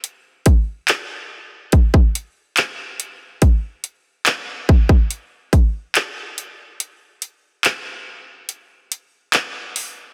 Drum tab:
HH |x-x-x---x-x-x-x-|x-x-x---x-x-x-x-|x-x-x---x-x-x-o-|
CP |----x-------x---|----x-------x---|----x-------x---|
BD |--o-----oo------|o-----oo--o-----|----------------|